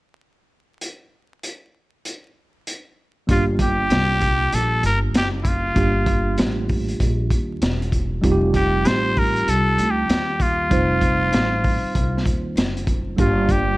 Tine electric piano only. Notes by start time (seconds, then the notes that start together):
3.27 G3 A#3 D4 F4 G4
5.74 G3 A#3 D4 F4 G4
8.21 G3 C4 D#4 F4 G4
8.31 G4
10.69 G3 C4 D#4 F4 C5
13.16 G3 A#3 D4 F4 G4